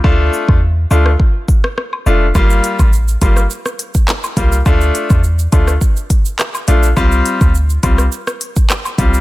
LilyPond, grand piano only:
\new Staff \with { instrumentName = "Grand piano" } { \time 4/4 \key d \minor \tempo 4 = 104 <a d' f'>4 r8 <a d' f'>8 r4. <a d' f'>8 | <g bes f'>4 r8 <g bes f'>8 r4. <g bes f'>8 | <a d' f'>4 r8 <a d' f'>8 r4. <a d' f'>8 | <g c' f'>4 r8 <g c' f'>8 r4. <g c' f'>8 | }